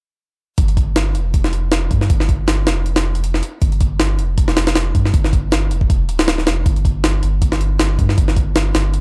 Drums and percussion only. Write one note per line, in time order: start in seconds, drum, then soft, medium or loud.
0.58 kick loud
0.58 closed hi-hat medium
0.68 closed hi-hat soft
0.77 kick medium
0.77 closed hi-hat medium
0.96 snare loud
0.96 closed hi-hat medium
1.15 closed hi-hat medium
1.34 kick loud
1.34 closed hi-hat medium
1.44 snare medium
1.53 closed hi-hat medium
1.72 snare loud
1.72 closed hi-hat medium
1.91 kick medium
1.91 closed hi-hat medium
2.01 snare soft
2.10 kick loud
2.10 closed hi-hat medium
2.20 snare soft
2.29 kick medium
2.29 closed hi-hat medium
2.48 snare loud
2.48 closed hi-hat medium
2.67 snare loud
2.67 closed hi-hat medium
2.86 closed hi-hat medium
2.96 snare medium
2.96 closed hi-hat medium
3.15 closed hi-hat medium
3.24 closed hi-hat medium
3.34 snare soft
3.43 closed hi-hat medium
3.62 kick loud
3.62 closed hi-hat medium
3.72 closed hi-hat soft
3.81 kick medium
3.81 closed hi-hat medium
4.00 snare loud
4.00 closed hi-hat medium
4.19 closed hi-hat medium
4.38 kick loud
4.38 closed hi-hat medium
4.48 snare medium
4.57 snare loud
4.57 closed hi-hat medium
4.67 snare loud
4.67 closed hi-hat medium
4.75 snare loud
4.75 closed hi-hat medium
4.95 kick medium
4.95 closed hi-hat medium
5.05 snare soft
5.14 kick loud
5.14 closed hi-hat medium
5.24 snare soft
5.33 kick medium
5.33 closed hi-hat medium
5.52 snare loud
5.52 closed hi-hat medium
5.71 closed hi-hat medium
5.81 kick medium
5.90 kick loud
5.90 closed hi-hat medium
6.09 closed hi-hat medium
6.19 snare loud
6.28 snare loud
6.28 closed hi-hat medium
6.38 snare soft
6.47 snare loud
6.47 closed hi-hat medium
6.66 kick loud
6.66 closed hi-hat medium
6.76 closed hi-hat soft
6.85 kick medium
6.85 closed hi-hat medium
7.04 snare loud
7.04 closed hi-hat medium
7.23 closed hi-hat medium
7.42 kick loud
7.42 closed hi-hat medium
7.52 snare medium
7.61 closed hi-hat medium
7.80 snare loud
7.80 closed hi-hat medium
7.99 kick medium
7.99 closed hi-hat medium
8.09 snare soft
8.18 kick loud
8.18 closed hi-hat medium
8.28 snare soft
8.36 kick medium
8.36 closed hi-hat medium
8.56 snare loud
8.56 closed hi-hat medium
8.75 snare loud
8.75 closed hi-hat medium
8.94 closed hi-hat medium